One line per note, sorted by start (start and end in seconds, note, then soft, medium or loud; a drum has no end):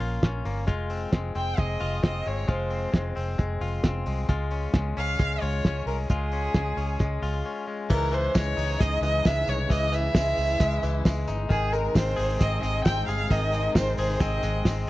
0.00 0.18 A#1 medium
0.00 2.37 F3 medium
0.00 0.44 A#3 medium
0.00 0.22 C#4 medium
0.00 0.67 F4 medium
0.00 open hi-hat medium
0.23 0.41 A#1 medium
0.23 0.73 C#4 medium
0.23 kick medium
0.23 snare loud
0.23 closed hi-hat medium
0.45 0.68 G1 medium
0.45 0.67 A#3 soft
0.45 open hi-hat medium
0.67 1.05 F1 medium
0.67 1.12 G#3 medium
0.67 1.80 F4 medium
0.67 kick medium
0.67 closed hi-hat medium
0.90 1.34 C4 medium
0.90 open hi-hat medium
1.12 1.31 F1 medium
1.12 1.57 G#3 medium
1.12 kick loud
1.12 snare medium
1.12 closed hi-hat medium
1.35 1.54 F1 medium
1.35 2.02 C4 medium
1.35 1.60 G5 medium
1.35 open hi-hat medium
1.57 1.77 F1 loud
1.57 2.26 G#3 medium
1.57 2.03 D#5 medium
1.57 kick loud
1.57 closed hi-hat medium
1.80 2.00 F1 medium
1.80 2.48 F4 medium
1.80 open hi-hat medium
2.03 2.22 F1 loud
2.03 2.69 C4 medium
2.03 2.29 D#5 medium
2.03 kick loud
2.03 snare loud
2.03 closed hi-hat medium
2.26 2.45 G1 medium
2.26 2.47 G#3 medium
2.26 2.51 C#5 medium
2.26 open hi-hat medium
2.48 2.85 F1 medium
2.48 2.92 G#3 medium
2.48 3.61 F4 medium
2.48 3.17 C5 medium
2.48 kick medium
2.48 closed hi-hat medium
2.70 3.15 C4 medium
2.70 open hi-hat medium
2.93 3.12 F1 medium
2.93 3.38 G#3 medium
2.93 kick loud
2.93 snare loud
2.93 closed hi-hat medium
3.16 3.35 F1 medium
3.16 3.82 C4 medium
3.16 open hi-hat medium
3.38 3.57 F1 loud
3.38 4.06 G#3 medium
3.38 kick loud
3.38 closed hi-hat medium
3.61 3.80 F1 medium
3.61 4.29 F4 medium
3.61 open hi-hat medium
3.84 4.03 F1 loud
3.84 4.34 C4 medium
3.84 kick medium
3.84 snare loud
3.84 closed hi-hat medium
4.06 4.25 C2 medium
4.06 4.28 G#3 soft
4.06 open hi-hat medium
4.29 4.66 C#2 medium
4.29 4.73 G#3 medium
4.29 5.41 F4 medium
4.29 kick medium
4.29 closed hi-hat medium
4.51 4.96 C#4 medium
4.51 open hi-hat soft
4.74 4.93 C#2 loud
4.74 5.19 G#3 medium
4.74 kick loud
4.74 snare loud
4.74 closed hi-hat medium
4.97 5.16 C#2 medium
4.97 5.65 C#4 medium
4.97 5.43 F5 loud
4.97 open hi-hat medium
5.19 5.38 C#2 medium
5.19 5.88 G#3 medium
5.19 kick loud
5.19 closed hi-hat medium
5.41 5.61 C#2 medium
5.41 6.09 F4 medium
5.41 5.86 C#5 medium
5.41 open hi-hat medium
5.64 5.83 C#2 medium
5.64 6.33 C#4 medium
5.64 kick medium
5.64 snare loud
5.64 closed hi-hat medium
5.86 6.05 C2 medium
5.86 6.10 G#3 medium
5.86 5.97 A#4 medium
5.86 open hi-hat medium
6.08 6.47 C#2 medium
6.08 6.55 G#3 medium
6.08 7.21 F4 medium
6.08 7.41 G#4 medium
6.08 kick medium
6.08 closed hi-hat medium
6.32 6.77 C#4 medium
6.32 open hi-hat medium
6.54 6.73 C#2 medium
6.54 7.00 G#3 medium
6.54 kick loud
6.54 snare loud
6.54 closed hi-hat medium
6.77 6.96 C#2 medium
6.77 7.45 C#4 medium
6.77 open hi-hat medium
6.99 7.19 C#2 loud
6.99 7.67 G#3 medium
6.99 kick loud
6.99 closed hi-hat medium
7.22 7.41 C#2 medium
7.22 7.95 F4 medium
7.22 open hi-hat medium
7.46 8.57 C#4 medium
7.68 8.34 G#3 soft
7.90 8.27 C#2 loud
7.90 11.47 C#3 medium
7.90 8.11 E3 medium
7.90 11.47 E3 medium
7.90 9.69 D#4 medium
7.90 8.15 A#4 medium
7.90 kick medium
7.90 crash loud
7.90 tambourine soft
8.12 9.02 E3 medium
8.12 8.37 C5 medium
8.12 hi-hat pedal medium
8.12 open hi-hat medium
8.35 8.54 C#2 loud
8.35 8.79 G#3 medium
8.35 8.82 C#5 loud
8.35 kick loud
8.35 snare loud
8.35 hi-hat pedal medium
8.35 open hi-hat medium
8.35 tambourine loud
8.57 8.76 C#2 loud
8.57 9.73 D#4 medium
8.57 hi-hat pedal medium
8.57 open hi-hat medium
8.57 tambourine soft
8.79 8.99 C#2 loud
8.79 9.25 G#3 medium
8.79 9.03 D#5 loud
8.79 kick loud
8.79 hi-hat pedal medium
8.79 open hi-hat medium
8.79 tambourine soft
9.01 9.20 C#2 medium
9.01 9.69 E3 medium
9.01 9.28 D#5 loud
9.01 hi-hat pedal medium
9.01 open hi-hat medium
9.01 tambourine medium
9.25 9.44 C#2 loud
9.25 10.14 G#3 medium
9.25 9.51 E5 loud
9.25 kick loud
9.25 snare loud
9.25 hi-hat pedal medium
9.25 open hi-hat medium
9.25 tambourine medium
9.47 9.66 C2 medium
9.47 9.72 C#5 loud
9.47 hi-hat pedal medium
9.47 open hi-hat medium
9.47 tambourine medium
9.69 10.07 C#2 loud
9.69 9.91 E3 medium
9.69 11.48 E4 medium
9.69 9.95 D#5 loud
9.69 kick medium
9.69 hi-hat pedal medium
9.69 open hi-hat medium
9.69 tambourine soft
9.92 10.82 E3 medium
9.92 11.28 E5 loud
9.92 hi-hat pedal medium
9.92 open hi-hat medium
9.92 tambourine soft
10.14 10.34 C#2 medium
10.14 10.60 G#3 medium
10.14 kick loud
10.14 snare loud
10.14 hi-hat pedal medium
10.14 open hi-hat medium
10.14 tambourine loud
10.37 10.56 C#2 medium
10.37 hi-hat pedal medium
10.37 open hi-hat medium
10.37 tambourine soft
10.60 10.78 C#2 loud
10.60 11.05 G#3 medium
10.60 kick loud
10.60 hi-hat pedal medium
10.60 open hi-hat medium
10.60 tambourine medium
10.83 11.01 C#2 medium
10.83 11.49 E3 medium
10.83 hi-hat pedal medium
10.83 open hi-hat medium
10.83 tambourine medium
11.05 11.24 C#2 loud
11.05 11.72 G#3 medium
11.05 kick loud
11.05 snare loud
11.05 hi-hat pedal medium
11.05 open hi-hat medium
11.05 tambourine medium
11.27 11.46 G1 medium
11.27 11.94 D#4 medium
11.27 hi-hat pedal medium
11.27 open hi-hat medium
11.27 tambourine medium
11.49 11.87 G#1 loud
11.49 14.90 C3 medium
11.49 13.31 D#3 medium
11.49 14.90 G#3 medium
11.49 14.90 D#4 medium
11.49 11.74 G#4 loud
11.49 kick medium
11.49 hi-hat pedal medium
11.49 open hi-hat medium
11.49 tambourine soft
11.73 12.61 G#3 medium
11.73 11.98 A#4 medium
11.73 hi-hat pedal medium
11.73 open hi-hat medium
11.73 tambourine soft
11.95 12.14 G#1 loud
11.95 12.39 C4 medium
11.95 12.40 C5 loud
11.95 kick loud
11.95 snare loud
11.95 hi-hat pedal medium
11.95 open hi-hat medium
11.95 tambourine loud
12.16 12.37 G#1 medium
12.16 13.08 G#4 medium
12.16 hi-hat pedal medium
12.16 open hi-hat medium
12.16 tambourine soft
12.40 12.59 G#1 loud
12.40 12.85 C4 medium
12.40 12.61 D#5 medium
12.40 kick loud
12.40 hi-hat pedal medium
12.40 open hi-hat medium
12.40 tambourine medium
12.62 12.81 G#1 medium
12.62 13.53 G#3 medium
12.62 12.84 D#5 loud
12.62 hi-hat pedal medium
12.62 open hi-hat medium
12.62 tambourine medium
12.85 13.04 G#1 loud
12.85 13.75 C4 medium
12.85 13.06 G5 loud
12.85 kick loud
12.85 snare loud
12.85 hi-hat pedal medium
12.85 open hi-hat medium
12.85 tambourine medium
13.07 13.26 G1 medium
13.07 13.98 G#4 medium
13.07 13.32 F5 loud
13.07 hi-hat pedal medium
13.07 open hi-hat medium
13.07 tambourine medium
13.30 13.67 G#1 loud
13.30 14.90 D#3 medium
13.30 13.76 D#5 loud
13.30 kick medium
13.30 hi-hat pedal medium
13.30 open hi-hat medium
13.30 tambourine soft
13.52 14.43 G#3 medium
13.52 hi-hat pedal medium
13.52 open hi-hat medium
13.52 tambourine soft
13.75 13.94 G#1 loud
13.75 14.19 C4 medium
13.75 13.97 C5 loud
13.75 kick loud
13.75 snare loud
13.75 hi-hat pedal medium
13.75 open hi-hat medium
13.75 tambourine loud
13.98 14.16 G#1 medium
13.98 14.88 G#4 medium
13.98 14.22 C5 medium
13.98 hi-hat pedal medium
13.98 open hi-hat medium
13.98 tambourine soft
14.20 14.39 G#1 medium
14.20 14.65 C4 medium
14.20 14.88 D#5 medium
14.20 kick loud
14.20 hi-hat pedal medium
14.20 open hi-hat medium
14.20 tambourine medium
14.43 14.61 G#1 medium
14.43 14.90 G#3 medium
14.43 hi-hat pedal medium
14.43 open hi-hat medium
14.43 tambourine medium
14.65 14.84 G#1 loud
14.65 14.90 C4 medium
14.65 kick loud
14.65 snare loud
14.65 hi-hat pedal medium
14.65 open hi-hat medium
14.65 tambourine medium